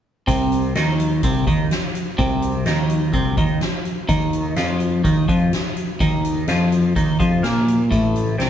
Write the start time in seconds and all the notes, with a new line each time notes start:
0.27 C2 C3, kick, closed hi-hat
0.52 closed hi-hat
0.75 D#2 D#3, snare, closed hi-hat
0.99 closed hi-hat
1.23 C2 C3, kick, closed hi-hat
1.47 D#2 D#3, kick, closed hi-hat
1.71 snare, closed hi-hat
1.95 closed hi-hat
2.18 C2 C3, kick, closed hi-hat
2.42 closed hi-hat
2.66 D#2 D#3, snare, closed hi-hat
2.89 closed hi-hat
3.13 C2 C3, kick, closed hi-hat
3.37 D#2 D#3, kick, closed hi-hat
3.61 snare, closed hi-hat
3.85 closed hi-hat
4.09 D#2 D#3, kick, closed hi-hat
4.33 closed hi-hat
4.56 F2 F3, snare, closed hi-hat
4.80 closed hi-hat
5.04 D#2 D#3, kick, closed hi-hat
5.28 F2 F3, kick, closed hi-hat
5.53 snare, closed hi-hat
5.77 closed hi-hat
6.00 D#2 D#3, kick, closed hi-hat
6.25 closed hi-hat
6.47 F2 F3, snare, closed hi-hat
6.72 closed hi-hat
6.96 D#2 D#3, kick, closed hi-hat
7.20 F2 F3, kick, closed hi-hat
7.43 A#2 A#3, snare, closed hi-hat
7.68 closed hi-hat
7.91 A1 A2, kick, closed hi-hat
8.16 closed hi-hat
8.38 C2 C3, snare, closed hi-hat